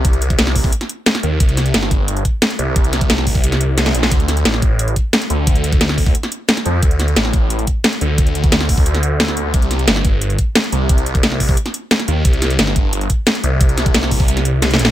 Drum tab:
HH |x--x--x--x--x-----o-----x--x--x-----x--x--x-----|x--x--x--x--x-----x-----x--x--x-----x--x--x-----|x--x--x--x--x-----o-----x--x--x-----x--x--x-----|x--x--x--x--x-----x-----x--x--x-----x--x--x-----|
SD |------------o--o-----------o--------o--o--------|------o-----o--o--------------------o-----------|------o-----o--o-----------o--------o--o-----o--|------o-----o--o--------------------o-----------|
BD |o--------o--------o--o--------------------------|o-----------------o-----------o-----------------|o--------o--------o--o--------------------------|o-----------------o-----------o-----------------|

HH |x--x--x--x--x-----o-----x--x--x-----x--x--x-----|x--x--x--x--x-----x-----x--x--x-----x--x--x-----|x--x--x--x--x-----o-----x--x--x-----x--x--x-----|x--x--x--x--x-----x-----x--x--x-----x--x--x-----|
SD |------------o--o-----------o--------o--o--------|------o-----o--o--------------------o-----------|------------o--o-----------o--------o--o--------|------o-----o--o--------------------o-----------|
BD |o--------o--------o--o--------------------------|o-----------------o-----------o-----------------|o--------o--------o--o--------------------------|o-----------------o-----------o-----------------|

HH |x--x--x--x--x-----o-----x--x--x-----x--x--x-----|x--x--x--x--x-----x-----x--x--x-----x--x--x-----|x--x--x--x--x-----o-----x--x--x-----x--x--x-----|
SD |------------o--o-----------o--------o--o--------|------o-----o--o--------------------o-----------|------o-----o--o-----------o--------o---o---o---|
BD |o--------o--------o--o--------------------------|o-----------------o-----------o-----------------|o--------o--------o--o--------------------------|